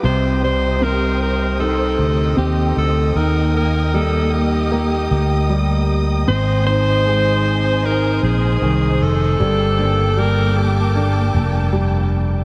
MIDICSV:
0, 0, Header, 1, 6, 480
1, 0, Start_track
1, 0, Tempo, 779221
1, 25, Time_signature, 4, 2, 24, 8
1, 7663, End_track
2, 0, Start_track
2, 0, Title_t, "String section"
2, 0, Program_c, 0, 48
2, 26, Note_on_c, 0, 72, 74
2, 27, Note_on_c, 0, 87, 72
2, 28, Note_on_c, 0, 75, 63
2, 29, Note_on_c, 0, 79, 64
2, 1927, Note_off_c, 0, 72, 0
2, 1938, Note_on_c, 0, 58, 71
2, 3843, Note_off_c, 0, 58, 0
2, 3843, Note_off_c, 0, 79, 0
2, 3870, Note_on_c, 0, 80, 68
2, 3872, Note_on_c, 0, 72, 66
2, 5762, Note_off_c, 0, 75, 0
2, 5762, Note_off_c, 0, 87, 0
2, 5768, Note_off_c, 0, 80, 0
2, 5769, Note_off_c, 0, 72, 0
2, 5788, Note_on_c, 0, 58, 76
2, 5790, Note_on_c, 0, 79, 67
2, 5790, Note_on_c, 0, 81, 67
2, 5792, Note_on_c, 0, 86, 83
2, 7663, Note_off_c, 0, 58, 0
2, 7663, Note_off_c, 0, 79, 0
2, 7663, Note_off_c, 0, 81, 0
2, 7663, Note_off_c, 0, 86, 0
2, 7663, End_track
3, 0, Start_track
3, 0, Title_t, "Alto saxophone"
3, 0, Program_c, 1, 65
3, 28, Note_on_c, 1, 72, 88
3, 250, Note_off_c, 1, 72, 0
3, 270, Note_on_c, 1, 72, 96
3, 512, Note_on_c, 1, 70, 103
3, 521, Note_off_c, 1, 72, 0
3, 746, Note_off_c, 1, 70, 0
3, 750, Note_on_c, 1, 70, 80
3, 971, Note_off_c, 1, 70, 0
3, 986, Note_on_c, 1, 69, 90
3, 1441, Note_off_c, 1, 69, 0
3, 1465, Note_on_c, 1, 67, 82
3, 1689, Note_off_c, 1, 67, 0
3, 1712, Note_on_c, 1, 69, 90
3, 1950, Note_on_c, 1, 70, 84
3, 1959, Note_off_c, 1, 69, 0
3, 2188, Note_off_c, 1, 70, 0
3, 2193, Note_on_c, 1, 70, 79
3, 2432, Note_on_c, 1, 69, 90
3, 2441, Note_off_c, 1, 70, 0
3, 2667, Note_off_c, 1, 69, 0
3, 2671, Note_on_c, 1, 67, 79
3, 3604, Note_off_c, 1, 67, 0
3, 3868, Note_on_c, 1, 72, 100
3, 4090, Note_off_c, 1, 72, 0
3, 4105, Note_on_c, 1, 72, 118
3, 4838, Note_on_c, 1, 70, 95
3, 4847, Note_off_c, 1, 72, 0
3, 5072, Note_off_c, 1, 70, 0
3, 5075, Note_on_c, 1, 68, 84
3, 5555, Note_on_c, 1, 69, 103
3, 5565, Note_off_c, 1, 68, 0
3, 6277, Note_on_c, 1, 70, 96
3, 6286, Note_off_c, 1, 69, 0
3, 6512, Note_on_c, 1, 67, 73
3, 6521, Note_off_c, 1, 70, 0
3, 7229, Note_off_c, 1, 67, 0
3, 7663, End_track
4, 0, Start_track
4, 0, Title_t, "Steel-string acoustic guitar"
4, 0, Program_c, 2, 25
4, 0, Note_on_c, 2, 55, 69
4, 24, Note_on_c, 2, 48, 79
4, 263, Note_on_c, 2, 60, 50
4, 496, Note_off_c, 2, 60, 0
4, 504, Note_on_c, 2, 60, 49
4, 508, Note_on_c, 2, 63, 45
4, 511, Note_on_c, 2, 67, 54
4, 976, Note_off_c, 2, 60, 0
4, 982, Note_on_c, 2, 60, 50
4, 984, Note_off_c, 2, 63, 0
4, 986, Note_off_c, 2, 67, 0
4, 987, Note_on_c, 2, 63, 51
4, 988, Note_on_c, 2, 67, 53
4, 1221, Note_off_c, 2, 55, 0
4, 1945, Note_off_c, 2, 48, 0
4, 1992, Note_off_c, 2, 60, 0
4, 2188, Note_on_c, 2, 58, 51
4, 2420, Note_off_c, 2, 58, 0
4, 2427, Note_on_c, 2, 58, 51
4, 2429, Note_off_c, 2, 63, 0
4, 2432, Note_on_c, 2, 63, 57
4, 2433, Note_off_c, 2, 67, 0
4, 2435, Note_on_c, 2, 67, 56
4, 2898, Note_off_c, 2, 58, 0
4, 2906, Note_on_c, 2, 58, 53
4, 2907, Note_off_c, 2, 67, 0
4, 2908, Note_off_c, 2, 63, 0
4, 2911, Note_on_c, 2, 63, 54
4, 2915, Note_on_c, 2, 67, 56
4, 3865, Note_on_c, 2, 44, 76
4, 3914, Note_off_c, 2, 58, 0
4, 3918, Note_off_c, 2, 67, 0
4, 4106, Note_on_c, 2, 60, 55
4, 4341, Note_off_c, 2, 60, 0
4, 4349, Note_on_c, 2, 60, 48
4, 4351, Note_off_c, 2, 63, 0
4, 4353, Note_on_c, 2, 63, 51
4, 4357, Note_on_c, 2, 68, 56
4, 4823, Note_off_c, 2, 60, 0
4, 4828, Note_off_c, 2, 63, 0
4, 4831, Note_off_c, 2, 68, 0
4, 4831, Note_on_c, 2, 60, 55
4, 4835, Note_on_c, 2, 63, 57
4, 5785, Note_off_c, 2, 44, 0
4, 5790, Note_on_c, 2, 43, 73
4, 5836, Note_off_c, 2, 60, 0
4, 5838, Note_off_c, 2, 63, 0
4, 6029, Note_on_c, 2, 58, 56
4, 6259, Note_off_c, 2, 58, 0
4, 6267, Note_on_c, 2, 58, 53
4, 6271, Note_on_c, 2, 62, 51
4, 6740, Note_off_c, 2, 58, 0
4, 6744, Note_off_c, 2, 62, 0
4, 6747, Note_on_c, 2, 58, 51
4, 6752, Note_on_c, 2, 62, 51
4, 6756, Note_on_c, 2, 69, 58
4, 7663, Note_off_c, 2, 43, 0
4, 7663, Note_off_c, 2, 58, 0
4, 7663, Note_off_c, 2, 62, 0
4, 7663, Note_off_c, 2, 69, 0
4, 7663, End_track
5, 0, Start_track
5, 0, Title_t, "Grand piano"
5, 0, Program_c, 3, 0
5, 0, Control_c, 3, 64, 127
5, 20, Note_on_c, 3, 48, 59
5, 33, Control_c, 3, 64, 0
5, 145, Control_c, 3, 64, 127
5, 262, Note_on_c, 3, 55, 41
5, 502, Note_on_c, 3, 60, 54
5, 983, Note_on_c, 3, 63, 51
5, 1199, Note_off_c, 3, 55, 0
5, 1439, Note_off_c, 3, 60, 0
5, 1458, Note_on_c, 3, 60, 57
5, 1918, Note_off_c, 3, 48, 0
5, 1920, Note_off_c, 3, 63, 0
5, 1927, Note_off_c, 3, 60, 0
5, 1947, Note_on_c, 3, 63, 55
5, 1952, Control_c, 3, 64, 0
5, 2055, Control_c, 3, 64, 127
5, 2183, Note_on_c, 3, 58, 46
5, 2425, Note_on_c, 3, 55, 51
5, 2895, Note_off_c, 3, 58, 0
5, 2905, Note_on_c, 3, 58, 52
5, 3361, Note_off_c, 3, 55, 0
5, 3385, Note_on_c, 3, 55, 60
5, 3840, Note_off_c, 3, 58, 0
5, 3842, Note_off_c, 3, 63, 0
5, 3851, Note_off_c, 3, 55, 0
5, 3865, Note_on_c, 3, 60, 64
5, 3873, Control_c, 3, 64, 0
5, 3986, Control_c, 3, 64, 127
5, 4106, Note_on_c, 3, 63, 49
5, 4348, Note_on_c, 3, 56, 50
5, 4816, Note_off_c, 3, 63, 0
5, 4825, Note_on_c, 3, 63, 58
5, 5282, Note_off_c, 3, 56, 0
5, 5311, Note_on_c, 3, 51, 58
5, 5761, Note_off_c, 3, 60, 0
5, 5761, Note_off_c, 3, 63, 0
5, 5774, Note_off_c, 3, 51, 0
5, 5789, Note_on_c, 3, 55, 63
5, 5794, Control_c, 3, 64, 0
5, 5907, Control_c, 3, 64, 127
5, 6030, Note_on_c, 3, 62, 45
5, 6256, Note_off_c, 3, 55, 0
5, 6265, Note_on_c, 3, 55, 57
5, 6738, Note_off_c, 3, 62, 0
5, 6747, Note_on_c, 3, 62, 52
5, 7201, Note_off_c, 3, 55, 0
5, 7223, Note_on_c, 3, 55, 58
5, 7663, Note_off_c, 3, 55, 0
5, 7663, Note_off_c, 3, 62, 0
5, 7663, End_track
6, 0, Start_track
6, 0, Title_t, "Fretless electric bass"
6, 0, Program_c, 4, 35
6, 23, Note_on_c, 4, 36, 96
6, 1199, Note_off_c, 4, 36, 0
6, 1222, Note_on_c, 4, 38, 68
6, 1447, Note_off_c, 4, 38, 0
6, 1461, Note_on_c, 4, 39, 82
6, 1686, Note_off_c, 4, 39, 0
6, 1703, Note_on_c, 4, 38, 77
6, 1927, Note_off_c, 4, 38, 0
6, 1941, Note_on_c, 4, 39, 86
6, 3118, Note_off_c, 4, 39, 0
6, 3145, Note_on_c, 4, 38, 75
6, 3841, Note_off_c, 4, 38, 0
6, 3865, Note_on_c, 4, 32, 88
6, 5041, Note_off_c, 4, 32, 0
6, 5067, Note_on_c, 4, 34, 74
6, 5290, Note_off_c, 4, 34, 0
6, 5306, Note_on_c, 4, 36, 81
6, 5529, Note_off_c, 4, 36, 0
6, 5546, Note_on_c, 4, 29, 90
6, 5769, Note_off_c, 4, 29, 0
6, 5788, Note_on_c, 4, 31, 101
6, 6962, Note_off_c, 4, 31, 0
6, 6985, Note_on_c, 4, 29, 89
6, 7663, Note_off_c, 4, 29, 0
6, 7663, End_track
0, 0, End_of_file